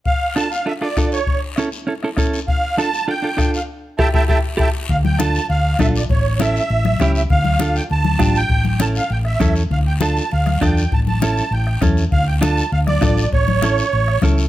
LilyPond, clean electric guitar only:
\new Staff \with { instrumentName = "Clean electric guitar" } { \time 4/4 \key d \minor \tempo 4 = 199 r4 <d' f' a'>8 r8 <d' f' a'>8 <d' f' a'>8 <d' f' a'>8 r8 | r4 <cis' e' a'>8 r8 <cis' e' a'>8 <cis' e' a'>8 <cis' e' a'>8 r8 | r4 <d' f' a'>8 r8 <d' f' a'>8 <d' f' a'>8 <d' f' a'>8 r8 | r4 <e' g' a'>8 <e' g' a'>8 <e' g' a'>8 r8 <e' g' a'>8 r8 |
r4 <d' f' a'>8 r4. <d' f' a'>8 r8 | r4 <cis' e' a'>8 r4. <cis' e' g'>8 r8 | r4 <d' f' a'>8 r4. <d' f' g'>8 r8 | r4 <cis' e' a'>8 r4. <cis' e' a'>8 r8 |
r4 <d' f' a'>8 r4. <d' f' a'>8 r8 | r4 <cis' e' a'>8 r4. <cis' e' a'>8 r8 | r4 <d' f' a'>8 r4. <d' f' a'>8 r8 | r4 <cis' e' a'>8 r4. <cis' e' a'>8 r8 | }